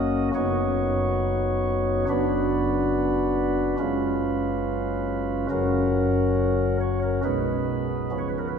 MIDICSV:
0, 0, Header, 1, 2, 480
1, 0, Start_track
1, 0, Tempo, 872093
1, 1149, Time_signature, 4, 2, 24, 8
1, 1149, Tempo, 854701
1, 3069, Tempo, 881057
1, 4747, End_track
2, 0, Start_track
2, 0, Title_t, "Pipe organ"
2, 0, Program_c, 0, 19
2, 0, Note_on_c, 0, 30, 66
2, 0, Note_on_c, 0, 42, 61
2, 0, Note_on_c, 0, 58, 53
2, 0, Note_on_c, 0, 61, 51
2, 0, Note_on_c, 0, 66, 51
2, 0, Note_on_c, 0, 75, 95
2, 156, Note_off_c, 0, 75, 0
2, 171, Note_off_c, 0, 30, 0
2, 171, Note_off_c, 0, 42, 0
2, 171, Note_off_c, 0, 58, 0
2, 171, Note_off_c, 0, 61, 0
2, 172, Note_off_c, 0, 66, 0
2, 191, Note_on_c, 0, 42, 69
2, 193, Note_on_c, 0, 66, 57
2, 194, Note_on_c, 0, 59, 57
2, 194, Note_on_c, 0, 73, 96
2, 195, Note_on_c, 0, 63, 57
2, 196, Note_on_c, 0, 30, 71
2, 1128, Note_off_c, 0, 42, 0
2, 1129, Note_off_c, 0, 59, 0
2, 1129, Note_off_c, 0, 63, 0
2, 1129, Note_off_c, 0, 66, 0
2, 1129, Note_off_c, 0, 73, 0
2, 1130, Note_off_c, 0, 30, 0
2, 1148, Note_on_c, 0, 42, 70
2, 1149, Note_on_c, 0, 30, 74
2, 1149, Note_on_c, 0, 66, 58
2, 1150, Note_on_c, 0, 59, 57
2, 1150, Note_on_c, 0, 62, 63
2, 1150, Note_on_c, 0, 71, 111
2, 2085, Note_off_c, 0, 30, 0
2, 2085, Note_off_c, 0, 42, 0
2, 2085, Note_off_c, 0, 59, 0
2, 2085, Note_off_c, 0, 66, 0
2, 2086, Note_off_c, 0, 62, 0
2, 2106, Note_on_c, 0, 56, 62
2, 2106, Note_on_c, 0, 61, 59
2, 2107, Note_on_c, 0, 42, 76
2, 2107, Note_on_c, 0, 65, 62
2, 2109, Note_on_c, 0, 30, 70
2, 3045, Note_off_c, 0, 56, 0
2, 3045, Note_off_c, 0, 61, 0
2, 3045, Note_off_c, 0, 65, 0
2, 3046, Note_off_c, 0, 30, 0
2, 3046, Note_off_c, 0, 42, 0
2, 3046, Note_off_c, 0, 71, 0
2, 3067, Note_on_c, 0, 70, 111
2, 3068, Note_on_c, 0, 30, 66
2, 3069, Note_on_c, 0, 42, 70
2, 3069, Note_on_c, 0, 66, 55
2, 3070, Note_on_c, 0, 54, 56
2, 3071, Note_on_c, 0, 61, 57
2, 3757, Note_off_c, 0, 70, 0
2, 3778, Note_on_c, 0, 73, 96
2, 3879, Note_off_c, 0, 73, 0
2, 3899, Note_on_c, 0, 70, 84
2, 3994, Note_off_c, 0, 30, 0
2, 3995, Note_off_c, 0, 42, 0
2, 3995, Note_off_c, 0, 54, 0
2, 3995, Note_off_c, 0, 66, 0
2, 3996, Note_off_c, 0, 61, 0
2, 3999, Note_off_c, 0, 70, 0
2, 4013, Note_on_c, 0, 71, 100
2, 4015, Note_on_c, 0, 56, 52
2, 4016, Note_on_c, 0, 35, 63
2, 4016, Note_on_c, 0, 47, 62
2, 4016, Note_on_c, 0, 59, 53
2, 4017, Note_on_c, 0, 63, 49
2, 4480, Note_off_c, 0, 59, 0
2, 4484, Note_off_c, 0, 56, 0
2, 4485, Note_off_c, 0, 35, 0
2, 4485, Note_off_c, 0, 47, 0
2, 4485, Note_off_c, 0, 63, 0
2, 4491, Note_on_c, 0, 53, 47
2, 4491, Note_on_c, 0, 59, 48
2, 4491, Note_on_c, 0, 61, 47
2, 4492, Note_on_c, 0, 49, 59
2, 4526, Note_off_c, 0, 71, 0
2, 4530, Note_on_c, 0, 73, 76
2, 4579, Note_off_c, 0, 73, 0
2, 4586, Note_on_c, 0, 71, 75
2, 4633, Note_off_c, 0, 71, 0
2, 4637, Note_on_c, 0, 70, 72
2, 4685, Note_off_c, 0, 70, 0
2, 4692, Note_on_c, 0, 71, 73
2, 4739, Note_off_c, 0, 71, 0
2, 4747, Note_off_c, 0, 49, 0
2, 4747, Note_off_c, 0, 53, 0
2, 4747, Note_off_c, 0, 59, 0
2, 4747, Note_off_c, 0, 61, 0
2, 4747, End_track
0, 0, End_of_file